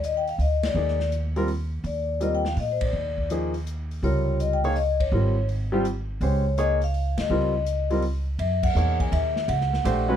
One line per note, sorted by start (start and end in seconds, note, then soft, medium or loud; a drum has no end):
0.00 0.35 D#2 medium
0.00 closed hi-hat soft
0.05 0.16 D#5 medium
0.17 0.29 G5 medium
0.27 0.34 F5 medium
0.27 open hi-hat soft
0.38 0.73 D2 medium
0.38 0.65 D#5 medium
0.38 open hi-hat soft
0.63 1.10 D5 medium
0.63 snare medium
0.63 ride medium
0.75 1.80 D#2 medium
0.75 0.97 A#3 medium
0.75 0.97 D#4 soft
0.75 0.98 G#4 soft
0.75 0.98 D5 medium
0.88 snare soft
1.00 snare soft
1.12 closed hi-hat soft
1.36 1.47 G3 medium
1.36 1.47 C4 medium
1.36 1.48 F4 medium
1.36 1.48 A#4 medium
1.36 open hi-hat soft
1.48 open hi-hat soft
1.84 2.53 D#2 medium
1.84 2.20 D5 medium
1.84 open hi-hat soft
2.21 2.43 G3 medium
2.21 2.43 C4 soft
2.21 2.43 F4 soft
2.21 2.43 A#4 medium
2.21 2.33 D#5 medium
2.21 closed hi-hat soft
2.35 2.40 G5 medium
2.45 2.59 F5 medium
2.45 snare medium
2.56 2.91 A#2 medium
2.56 2.74 D#5 medium
2.56 open hi-hat soft
2.72 2.81 C5 medium
2.81 3.28 D5 medium
2.81 kick medium
2.81 ride medium
2.93 3.99 D#2 medium
3.18 kick medium
3.30 3.52 F3 medium
3.30 3.52 A#3 medium
3.30 3.52 D#4 soft
3.30 3.53 G#4 medium
3.30 closed hi-hat medium
3.54 open hi-hat soft
3.67 closed hi-hat soft
3.91 open hi-hat soft
4.02 5.08 C#2 medium
4.02 4.59 C3 soft
4.02 4.59 G3 medium
4.02 4.59 F4 soft
4.02 4.59 A#4 medium
4.02 4.38 C#5 medium
4.02 open hi-hat soft
4.40 4.53 D#5 medium
4.40 closed hi-hat soft
4.53 4.65 G5 medium
4.64 4.75 A#3 medium
4.64 4.75 D#4 medium
4.64 4.75 G#4 medium
4.64 4.75 C#5 medium
4.64 4.76 F5 medium
4.64 open hi-hat soft
4.76 5.01 D#5 medium
4.76 open hi-hat soft
5.00 5.45 C#5 medium
5.00 kick medium
5.00 ride medium
5.12 6.17 G#1 medium
5.12 5.34 G3 medium
5.12 5.34 C4 medium
5.12 5.35 F4 soft
5.12 5.35 A#4 medium
5.49 open hi-hat soft
5.72 5.83 G3 medium
5.72 5.84 C4 medium
5.72 5.84 F4 medium
5.72 5.84 G4 medium
5.85 closed hi-hat soft
6.21 7.14 C#2 medium
6.21 6.43 G#3 medium
6.21 6.43 C#4 soft
6.21 6.43 G4 soft
6.21 6.44 C5 medium
6.21 6.59 C#5 medium
6.21 open hi-hat soft
6.58 6.79 A#3 medium
6.58 6.79 D#4 medium
6.58 6.80 G#4 medium
6.58 6.80 C#5 medium
6.58 6.70 D#5 medium
6.58 closed hi-hat medium
6.81 7.20 F5 loud
6.81 open hi-hat soft
6.94 open hi-hat soft
7.18 7.29 D2 medium
7.18 8.00 D#5 medium
7.18 snare medium
7.18 ride medium
7.30 8.35 C#2 medium
7.30 7.52 G3 medium
7.30 7.52 C4 medium
7.30 7.52 F4 medium
7.30 7.52 A#4 medium
7.66 closed hi-hat soft
7.90 8.02 G3 medium
7.90 8.02 C4 medium
7.90 8.02 F4 medium
7.90 8.02 A#4 medium
7.90 open hi-hat soft
8.02 open hi-hat soft
8.39 8.74 F#2 medium
8.39 8.64 E5 medium
8.39 ride medium
8.63 8.97 F#5 medium
8.63 kick medium
8.63 crash medium
8.75 9.11 E2 medium
8.75 9.31 A#3 medium
8.75 9.31 D#4 medium
8.75 9.31 G#4 medium
8.75 9.32 C#5 medium
8.75 hi-hat pedal medium
9.00 9.11 G#5 medium
9.00 kick medium
9.00 ride soft
9.12 9.47 D#2 loud
9.12 9.49 E5 loud
9.12 ride medium
9.36 snare soft
9.48 9.83 C#2 medium
9.48 10.16 F#5 loud
9.48 ride medium
9.61 snare soft
9.73 snare soft
9.84 10.16 A#1 medium
9.84 10.06 A3 medium
9.84 10.06 D4 medium
9.84 10.06 G4 medium
9.84 10.07 C5 medium
9.84 hi-hat pedal medium
9.84 ride medium
10.08 10.16 G#3 medium
10.08 10.16 C#4 medium
10.08 10.16 F#4 medium
10.08 10.16 B4 medium